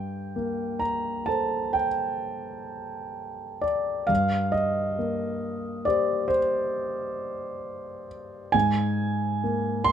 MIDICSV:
0, 0, Header, 1, 2, 480
1, 0, Start_track
1, 0, Key_signature, -2, "minor"
1, 0, Tempo, 936037
1, 2100, Time_signature, 5, 2, 24, 8
1, 2100, Tempo, 877193
1, 3540, Tempo, 895522
1, 5252, End_track
2, 0, Start_track
2, 0, Title_t, "Grand piano"
2, 0, Program_c, 0, 0
2, 0, Control_c, 0, 64, 127
2, 0, Note_on_c, 0, 43, 35
2, 0, Note_on_c, 0, 79, 60
2, 184, Note_on_c, 0, 58, 30
2, 408, Note_on_c, 0, 82, 55
2, 419, Note_off_c, 0, 79, 0
2, 645, Note_on_c, 0, 81, 62
2, 654, Note_off_c, 0, 82, 0
2, 654, Note_on_c, 0, 69, 26
2, 657, Note_on_c, 0, 72, 29
2, 887, Note_on_c, 0, 79, 56
2, 894, Note_off_c, 0, 81, 0
2, 951, Note_off_c, 0, 58, 0
2, 1854, Note_on_c, 0, 74, 57
2, 1857, Note_off_c, 0, 79, 0
2, 2075, Note_off_c, 0, 69, 0
2, 2076, Note_off_c, 0, 72, 0
2, 2079, Note_off_c, 0, 43, 0
2, 2086, Note_on_c, 0, 77, 70
2, 2094, Note_off_c, 0, 74, 0
2, 2097, Note_on_c, 0, 43, 38
2, 2110, Control_c, 0, 64, 0
2, 2194, Control_c, 0, 64, 127
2, 2332, Note_on_c, 0, 75, 62
2, 2338, Note_off_c, 0, 77, 0
2, 2587, Note_on_c, 0, 58, 31
2, 3061, Note_off_c, 0, 75, 0
2, 3062, Note_on_c, 0, 74, 67
2, 3073, Note_on_c, 0, 67, 31
2, 3074, Note_on_c, 0, 72, 37
2, 3287, Note_off_c, 0, 72, 0
2, 3295, Note_on_c, 0, 72, 62
2, 3302, Note_off_c, 0, 74, 0
2, 3352, Note_off_c, 0, 58, 0
2, 4264, Note_off_c, 0, 72, 0
2, 4490, Note_off_c, 0, 43, 0
2, 4494, Note_off_c, 0, 67, 0
2, 4503, Note_on_c, 0, 80, 76
2, 4514, Note_on_c, 0, 44, 43
2, 4521, Control_c, 0, 64, 0
2, 4593, Control_c, 0, 64, 127
2, 4992, Note_on_c, 0, 58, 36
2, 5211, Note_on_c, 0, 84, 82
2, 5216, Note_off_c, 0, 80, 0
2, 5252, Note_off_c, 0, 44, 0
2, 5252, Note_off_c, 0, 58, 0
2, 5252, Note_off_c, 0, 84, 0
2, 5252, End_track
0, 0, End_of_file